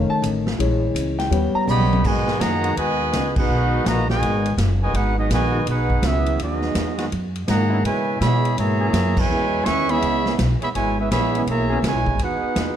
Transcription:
Already playing: D#3 A3 C#4
0.10 A5, muted upright bass stroke
0.22 A1, hi-hat pedal, ride
0.47 snare
0.58 A#1 E3 G#3 C#4, ride
0.95 C#2, hi-hat pedal, ride
1.19 G5, snare, ride
1.30 D#2 G3 B3 C#4, ride
1.54 A#5, muted upright bass stroke
1.65 B1 C#3 G3 B3, hi-hat pedal
1.69 G4 C#5 D#5 B5
1.80 high tom
1.93 high tom
2.03 G#2 B2 D#3 G#3 F#4 B4 D#5 G#5, kick, crash
2.27 snare
2.39 F#2 D#3 F#3 A#3 G#4 D#5 F#5 A#5, snare, hi-hat pedal, ride
2.63 D#3 G#3 B3 F#4, ride
2.76 D#2 B2 D#3 G#3 F#4 B4 D#5 G#5, ride
3.13 C#2, snare, hi-hat pedal, ride
3.36 B3 D#4 F#4 G#4 B4 F#5, kick, crash
3.48 B1 D#3 G#3 B3 F#4
3.85 A#1 A#3 F#4 B4 D#5 A#5, snare, hi-hat pedal, ride
4.08 B2 D#3 G#3 F#4 B4 D#5 G#5, snare
4.22 G#1, ride
4.46 ride
4.57 F#1, snare, hi-hat pedal, ride
4.83 B2 D#3 G#3 F#4 B4 D#5 G#5
4.93 G#1 B3 D#4 F#4 G#4 B4 F#5, ride
5.17 F#3 B3 D#4 F#4 G#4 D#5
5.30 A#1 D#3 G#3 B3 F#4 B4 D#5 G#5, snare, hi-hat pedal, ride
5.51 D#3 G#3 B3 F#4
5.66 B1 B3 D#4 F#4, ride
5.70 D#4 G#4 B4 F#5
5.90 kick
6.02 C#2 F#3 B3 E4 F#4 E5, snare, hi-hat pedal, ride
6.06 G#4
6.26 ride
6.38 D#2 F#3 B3 D#4 F#4 G#4, ride
6.42 D#5
6.62 snare
6.75 E2, snare, hi-hat pedal, ride
6.97 D#3 G#3 B3 F#4, snare, ride
7.12 F#2, ride
7.35 ride
7.48 G#2 D#3 F#3 A#3 G#4 D#5 F#5 A#5, snare, hi-hat pedal, ride
7.70 E3 B3 C#4 E4
7.84 B2 C#3 E3 G#3 E4 B4 C#5 G#5, ride
8.21 B2 E3 G#3 B3 G#4 C#5 E5 B5, snare, hi-hat pedal, ride
8.45 ride
8.57 G#2 B2 E3 A#3 G#4 C#5 E5 A#5, ride
8.81 E3 B3 C#4 G#4
8.93 F#2, snare, hi-hat pedal, ride
9.17 B2 E3 G#3 E4 B4 C#5 G#5, kick, crash
9.29 E2 E3 B3 C#4 G#4
9.65 D#2 E3 G#3 C#4 B4 E5 G#5 C#6, snare, hi-hat pedal, ride
9.89 E3 G#3 B3 C#4 G#4 C#5 E5 B5, ride
10.02 C#2, ride
10.26 snare
10.39 B1, snare, hi-hat pedal, ride
10.61 E3 G#3 B3 G#4 C#5 E5 B5, muted upright bass stroke, ride
10.75 G#1 B2 E3 G#3 E4 B4 C#5 G#5, ride
10.99 G#3 B3 C#4 E4 G#4 B4 E5
11.10 A#1 E3 G#3 B3 G#4 C#5 E5 B5, snare, hi-hat pedal, ride
11.35 E3 B3 C#4 G#4, ride
11.47 B1 B2 E3 A#3 G#4 C#5 E5 A#5, ride
11.70 E3 B3 C#4 G#4
11.82 C#2 B2 E3 G#3, snare, hi-hat pedal, ride
11.86 E4 B4 C#5 G#5
11.94 B1
12.06 G#1, kick
12.18 D#2 G#4, ride
12.23 B3 D#4 F#4 B4 F#5
12.42 muted upright bass stroke
12.56 E2, snare, hi-hat pedal, ride

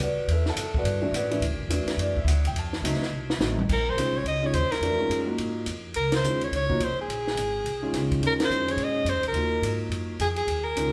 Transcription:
0.00 D2 F#4 B4 D5 F#5
0.18 muted upright bass stroke
0.28 E2 E5, ride
0.32 E4 A4 B4
0.46 A4 E5 A5, snare
0.50 F#5
0.56 F#2, hi-hat pedal, ride
0.74 F#4 B4 D5 F#5, kick
0.84 G2, ride
1.02 E3 A3 D4 F#4
1.12 A2 F#5, hi-hat pedal, ride
1.16 F#4 B4 D5
1.31 E3 A3 D4 E4, ride
1.40 D2, ride
1.50 A1
1.59 G1
1.68 E2 E3 A3 D4 F#4, hi-hat pedal, ride
1.86 muted upright bass stroke, snare, ride
1.97 F#2 D5, ride
2.17 E5, kick
2.25 D2 F#5, hi-hat pedal, ride
2.45 G5, ride
2.53 F2, ride
2.58 A5
2.73 snare
2.82 C#2 F#3 A3 C4 D#4, hi-hat pedal, ride
2.94 snare
2.99 muted upright bass stroke, snare
3.10 C2
3.30 snare
3.39 A1 F#3 A3 C4 D#4, snare, hi-hat pedal
3.59 mid tom
3.69 A#1 A#4, kick, crash
3.89 C5
3.96 C2 D#3 G#3 C#4 F4, hi-hat pedal, ride
4.17 C#5
4.24 C#2 D#5, ride
4.42 D#3 G#3 C#4 F4 C#5
4.53 D#2 C5, hi-hat pedal, ride
4.72 A#4, snare, ride
4.81 F2 E3 A3 D4 F#4, ride
4.98 D#3 G#3 C#4 F4
5.09 F#2, hi-hat pedal, ride
5.26 A#3 D#4 F4 F#4
5.38 G#2, ride
5.66 F2, hi-hat pedal, ride
5.94 C#2 A#4, ride
6.12 C5, snare, ride
6.24 D#2 D#3 G#3 C#4 F4, hi-hat pedal
6.41 C#5, ride
6.51 C#2, ride
6.56 C#5
6.69 F3 A#3 D#4 F#4, kick
6.80 C2, hi-hat pedal, ride
6.84 C5
7.01 G#4
7.08 A#1, ride
7.27 snare
7.36 G#1, hi-hat pedal, ride
7.64 C2, ride
7.82 D#3 G#3 C#4 F4
7.93 C#2, snare, hi-hat pedal, ride
8.11 kick, ride
8.20 D#2 D#3 G#3 C#4 F4, ride
8.27 A#4
8.40 snare, ride
8.44 C5
8.50 F2, hi-hat pedal
8.67 D#3 G#3 C#4 G#4, ride
8.72 C#5
8.77 A#2, ride
8.84 D#5
9.05 F#2, hi-hat pedal, ride
9.09 C5
9.15 D#2
9.23 C#2, ride
9.28 A#4
9.32 D#2 A#3 D#4 F4 F#4, ride
9.62 G#2, hi-hat pedal, ride
9.89 F#2, ride
10.20 F2 G#4, hi-hat pedal, ride
10.36 G#4, ride
10.47 D#2, ride
10.64 A#4
10.76 C#2 D#3 G#3 C#4 F4, hi-hat pedal, ride

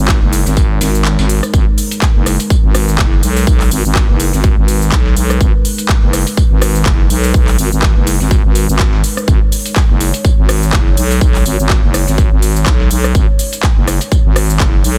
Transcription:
Already playing: G#1 G#3 D#4 A#4 C#5
0.08 kick, snare, clap, tambourine, shaker
0.22 F#1
0.33 open hi-hat, tambourine, shaker
0.46 G#1, snare, shaker
0.57 kick, tambourine, shaker
0.81 G#1, snare, open hi-hat, tambourine, shaker
0.95 shaker
1.05 snare, clap, tambourine, shaker
1.19 G#1, snare, tambourine
1.29 open hi-hat, shaker
1.43 cross-stick, tambourine, shaker
1.54 G#1 B4, kick, tambourine, shaker
1.78 open hi-hat, tambourine, shaker
1.91 closed hi-hat, shaker
2.02 kick, snare, clap, tambourine, shaker
2.15 F#1
2.26 cross-stick, open hi-hat, tambourine, shaker
2.40 closed hi-hat, shaker
2.50 kick, tambourine, shaker
2.64 G#1
2.75 cross-stick, open hi-hat, tambourine, shaker
2.88 shaker
2.99 F#1, kick, snare, clap, tambourine, shaker
3.23 B1, open hi-hat, tambourine, shaker
3.36 snare, open hi-hat, shaker
3.47 B1, kick, tambourine, shaker
3.60 snare, clap, open hi-hat
3.71 G#1, open hi-hat, tambourine, shaker
3.85 G#1, shaker
3.95 kick, snare, clap, tambourine, shaker
4.09 F#1
4.20 open hi-hat, tambourine, shaker
4.33 G#1, snare, shaker
4.44 kick, tambourine, shaker
4.57 G#1
4.68 open hi-hat, tambourine, shaker
4.82 shaker
4.92 B1, kick, snare, clap, tambourine, shaker
5.06 snare
5.16 B1, open hi-hat, tambourine, shaker
5.30 cross-stick, shaker
5.41 G#1, kick, tambourine, shaker
5.65 open hi-hat, tambourine, shaker
5.78 closed hi-hat, shaker
5.89 kick, snare, clap, tambourine, shaker
6.03 F#1
6.13 cross-stick, open hi-hat, tambourine, shaker
6.27 closed hi-hat, shaker
6.37 kick, tambourine, shaker
6.51 G#1
6.62 cross-stick, open hi-hat, tambourine, shaker
6.76 shaker
6.86 F#1, kick, snare, clap, tambourine, shaker
7.10 B1, open hi-hat, tambourine, shaker
7.24 snare, open hi-hat, shaker
7.34 B1, kick, tambourine, shaker
7.48 snare, clap, open hi-hat
7.58 G#1, open hi-hat, tambourine, shaker
7.72 G#1, shaker
7.82 kick, snare, clap, tambourine, shaker
7.96 F#1
8.07 open hi-hat, tambourine, shaker
8.20 G#1, snare, shaker
8.31 kick, tambourine, shaker
8.44 G#1
8.55 open hi-hat, tambourine, shaker
8.69 G#1, shaker
8.79 kick, snare, clap, tambourine, shaker
8.93 snare
9.04 open hi-hat, tambourine, shaker
9.17 cross-stick, shaker
9.28 G#1 C#5, kick, tambourine, shaker
9.52 open hi-hat, tambourine, shaker
9.66 closed hi-hat, shaker
9.76 kick, snare, clap, tambourine, shaker
9.90 F#1
10.00 open hi-hat, tambourine, shaker
10.14 closed hi-hat, shaker
10.25 kick, tambourine, shaker
10.38 G#1
10.49 cross-stick, open hi-hat, tambourine, shaker
10.63 shaker
10.73 F#1, kick, snare, clap, tambourine, shaker
10.97 B1, open hi-hat, tambourine, shaker
11.11 snare, open hi-hat, shaker
11.21 B1, kick, tambourine, shaker
11.35 snare, clap, open hi-hat
11.45 G#1, open hi-hat, tambourine, shaker
11.59 G#1, shaker
11.70 kick, snare, clap, tambourine, shaker
11.83 F#1
11.94 cross-stick, open hi-hat, tambourine, shaker
12.07 G#1, snare, shaker
12.18 kick, tambourine, shaker
12.32 G#1
12.42 open hi-hat, tambourine, shaker
12.56 shaker
12.66 B1, kick, snare, clap, tambourine, shaker
12.80 snare
12.91 B1, open hi-hat, tambourine, shaker
13.04 cross-stick, shaker
13.15 G#1, kick, tambourine, shaker
13.39 open hi-hat, tambourine, shaker
13.53 closed hi-hat, shaker
13.63 kick, snare, clap, tambourine, shaker
13.77 F#1
13.87 cross-stick, open hi-hat, tambourine, shaker
14.01 closed hi-hat, shaker
14.12 kick, tambourine, shaker
14.25 G#1
14.36 cross-stick, open hi-hat, tambourine, shaker
14.50 shaker
14.60 F#1, kick, snare, clap, tambourine, shaker
14.84 B1, open hi-hat, tambourine, shaker

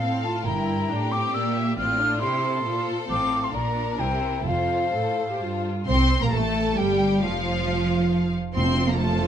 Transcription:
Already playing: A4 F5
0.01 A2 C4 F5
0.24 F4 A5
0.44 G1 G2 E4 A#4 G5 A#5
0.89 A2 D4 G4 G5
1.12 C4 D6
1.33 A#2 A#3 D5 E6
1.55 E5
1.77 A1 A2 C4 F4 D5 F6
2.00 D4
2.20 C3 E4 G4 C5 C6
2.44 A4
2.65 A#2 F4 C5
3.09 A1 A2 C4 F5 D6
3.44 C6
3.53 A#1 A#2 D4 A#4 D5 A#5
3.98 C2 C3 E4 C5 G5
4.45 F1 F2 F4 A4 C5 F5
4.94 A2 A4
5.31 G4
5.40 G2 F4
5.87 C2 C4 C5 C6
6.21 A#1 A#3 A#4 A#5
6.32 A1 A3 A4 A5
6.77 G1 G3 G4 G5
7.21 F1 F3 F4 F5
8.55 F1 F2 F3 A3 C4 F4 A4 C5 C6
8.89 A#3 A#5
9.00 A3 A5

